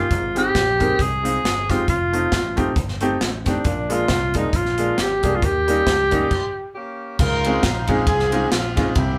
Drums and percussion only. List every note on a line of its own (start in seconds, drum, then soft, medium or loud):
0.11 kick loud
0.11 closed hi-hat medium
0.36 closed hi-hat medium
0.55 kick medium
0.55 snare loud
0.55 closed hi-hat medium
0.80 kick medium
0.80 closed hi-hat medium
0.99 kick loud
0.99 closed hi-hat medium
1.25 closed hi-hat medium
1.45 snare loud
1.45 closed hi-hat medium
1.69 kick medium
1.69 snare soft
1.69 closed hi-hat medium
1.88 kick loud
1.88 closed hi-hat medium
2.14 closed hi-hat medium
2.32 kick medium
2.32 snare loud
2.32 closed hi-hat medium
2.57 kick medium
2.57 closed hi-hat medium
2.76 kick loud
2.76 closed hi-hat medium
2.88 snare soft
3.01 closed hi-hat medium
3.21 snare loud
3.21 closed hi-hat medium
3.45 kick medium
3.45 snare soft
3.45 closed hi-hat medium
3.65 kick loud
3.65 closed hi-hat medium
3.90 closed hi-hat medium
4.08 kick medium
4.08 snare loud
4.08 closed hi-hat medium
4.34 kick medium
4.34 closed hi-hat medium
4.53 kick loud
4.53 closed hi-hat medium
4.65 snare soft
4.78 closed hi-hat medium
4.98 snare loud
4.98 closed hi-hat medium
5.23 kick medium
5.23 closed hi-hat medium
5.42 kick loud
5.42 closed hi-hat medium
5.68 closed hi-hat medium
5.87 kick medium
5.87 snare loud
5.87 closed hi-hat medium
6.11 kick medium
6.11 closed hi-hat medium
6.31 kick loud
6.31 crash medium
7.19 kick loud
7.19 crash loud
7.45 ride bell medium
7.63 kick loud
7.63 snare loud
7.63 ride bell medium
7.88 kick medium
7.88 ride bell medium
8.07 kick loud
8.07 ride bell medium
8.19 snare soft
8.32 ride bell medium
8.52 snare loud
8.52 ride bell medium
8.76 kick loud
8.76 snare soft
8.76 ride bell medium
8.95 kick loud
8.95 ride bell medium